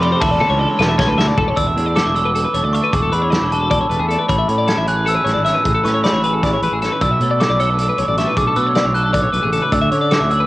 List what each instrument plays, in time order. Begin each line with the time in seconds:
Already playing: fingered electric bass F2, clean electric guitar C3 F3 A3 E4
0.02 clean electric guitar G4 D5, glockenspiel B5, ride
0.12 clean electric guitar C5
0.21 fingered electric bass E1, clean electric guitar E3 A4 E5, glockenspiel A5, kick, ride
0.31 clean electric guitar D5
0.40 clean electric guitar D4 A4, high tom
0.50 fingered electric bass C#2, clean electric guitar C#5
0.59 clean electric guitar A4 D5
0.69 clean electric guitar C#5
0.79 fingered electric bass E1, clean electric guitar A3 B4, snare
0.89 clean electric guitar E5
0.98 fingered electric bass B1, clean electric guitar A4 C#5, kick, snare
1.07 fingered electric bass D2, clean electric guitar B4
1.18 clean electric guitar B2 E5, snare
1.27 clean electric guitar D5
1.37 fingered electric bass E1, clean electric guitar A4, kick
1.48 clean electric guitar C#5
1.56 fingered electric bass E1, clean electric guitar E3 D5, glockenspiel E6, kick, closed hi-hat
1.67 clean electric guitar E5
1.76 fingered electric bass E2, clean electric guitar D4 C#5, closed hi-hat
1.86 clean electric guitar D5
1.96 clean electric guitar A4, glockenspiel D6, snare, closed hi-hat
2.05 fingered electric bass E1, clean electric guitar E5
2.15 clean electric guitar A4 C#5, glockenspiel E6, closed hi-hat
2.25 clean electric guitar B4
2.34 clean electric guitar A4, closed hi-hat
2.45 clean electric guitar B4
2.53 fingered electric bass E1, clean electric guitar A3 C#5, closed hi-hat
2.63 fingered electric bass D2, clean electric guitar D5
2.73 clean electric guitar D4 E5, glockenspiel C#6, closed hi-hat
2.84 clean electric guitar B4
2.92 fingered electric bass E1, clean electric guitar E3 G#4, glockenspiel D6, kick, closed hi-hat
3.02 clean electric guitar A4
3.12 fingered electric bass E2, clean electric guitar D4 B4, glockenspiel B5, closed hi-hat
3.22 clean electric guitar C#5
3.30 clean electric guitar A4 D5, snare, closed hi-hat
3.41 fingered electric bass E1, clean electric guitar C#5
3.51 clean electric guitar A4 B4, glockenspiel A5, closed hi-hat
3.61 clean electric guitar A4
3.71 clean electric guitar A4 D5, glockenspiel A5, kick, closed hi-hat
3.81 clean electric guitar C#5
3.90 fingered electric bass E1, clean electric guitar A3 B4, closed hi-hat
4.00 fingered electric bass E2, clean electric guitar G#4
4.09 clean electric guitar D4 A4, closed hi-hat
4.19 clean electric guitar B4
4.28 fingered electric bass A1, clean electric guitar A2 C#5, glockenspiel B5, kick, closed hi-hat
4.38 clean electric guitar E5
4.48 fingered electric bass A2, clean electric guitar C#4 C#5, glockenspiel B5, closed hi-hat
4.58 clean electric guitar D5
4.67 clean electric guitar E4 A4, glockenspiel G#6, snare, closed hi-hat
4.77 fingered electric bass A1, clean electric guitar E5
4.87 clean electric guitar G#4 C#5, glockenspiel F#6, closed hi-hat
4.96 clean electric guitar B4
5.06 clean electric guitar E4 A4, glockenspiel E6, closed hi-hat
5.14 clean electric guitar B4
5.24 fingered electric bass A1, clean electric guitar E3 C#5, snare, closed hi-hat
5.34 fingered electric bass G#1, clean electric guitar D5
5.45 clean electric guitar C#4 E5, glockenspiel E6, snare, closed hi-hat
5.54 clean electric guitar B4
5.64 fingered electric bass A1, clean electric guitar A2 G#4, kick, closed hi-hat
5.75 clean electric guitar A4
5.84 fingered electric bass A2, clean electric guitar C#4 B4, glockenspiel C#6, snare, closed hi-hat
5.94 clean electric guitar C#5
6.04 clean electric guitar C#4 D5, glockenspiel B5, snare, closed hi-hat
6.13 fingered electric bass A1, clean electric guitar E4 C#5
6.24 clean electric guitar G#4 B4, closed hi-hat
6.33 clean electric guitar A4
6.43 clean electric guitar E4 D5, kick, snare, closed hi-hat
6.54 clean electric guitar C#5
6.62 fingered electric bass A1, clean electric guitar E3 B4, closed hi-hat
6.72 fingered electric bass A1, clean electric guitar G#4
6.82 clean electric guitar C#4 A4, snare, closed hi-hat
6.92 clean electric guitar B4
7.01 fingered electric bass B1, clean electric guitar B2 D5, glockenspiel E6, kick, closed hi-hat
7.11 clean electric guitar E5
7.20 fingered electric bass B2, clean electric guitar A3 C#5, closed hi-hat
7.31 clean electric guitar D5
7.40 clean electric guitar D4 A4, glockenspiel D6, snare, closed hi-hat
7.49 fingered electric bass B1, clean electric guitar D5
7.60 clean electric guitar A4 C#5, glockenspiel E6, closed hi-hat
7.70 clean electric guitar B4
7.78 clean electric guitar D4 A4, closed hi-hat
7.89 clean electric guitar B4
7.98 fingered electric bass B1, clean electric guitar F#3 C#5, closed hi-hat
8.07 fingered electric bass A1, clean electric guitar D5
8.17 clean electric guitar A3 E5, glockenspiel C#6, snare, closed hi-hat
8.27 clean electric guitar B4
8.36 fingered electric bass B1, clean electric guitar B2 G#4, glockenspiel D6, kick, closed hi-hat
8.47 clean electric guitar A4
8.56 fingered electric bass B2, clean electric guitar A3 B4, glockenspiel E6, closed hi-hat
8.67 clean electric guitar C#5
8.75 clean electric guitar D4 D5, snare, closed hi-hat
8.85 fingered electric bass B1, clean electric guitar C#5
8.94 clean electric guitar A4 B4, glockenspiel F#6, closed hi-hat
9.04 clean electric guitar A4
9.13 clean electric guitar A2 D5, glockenspiel D6, kick, closed hi-hat
9.23 clean electric guitar C#5
9.33 fingered electric bass B1, clean electric guitar B2 B4, closed hi-hat
9.43 fingered electric bass A1, clean electric guitar G#4
9.53 clean electric guitar C#3 A4, closed hi-hat
9.62 clean electric guitar B4
9.71 fingered electric bass D2, clean electric guitar D3 D5, glockenspiel E6, kick, closed hi-hat
9.82 clean electric guitar E5
9.91 fingered electric bass D3, clean electric guitar C#4 C#5, closed hi-hat
10.01 clean electric guitar D5
10.11 clean electric guitar D4 A4, glockenspiel D6, snare, closed hi-hat
10.20 fingered electric bass D2, clean electric guitar E5
10.30 clean electric guitar F#4 C#5, glockenspiel E6, closed hi-hat
10.40 clean electric guitar B4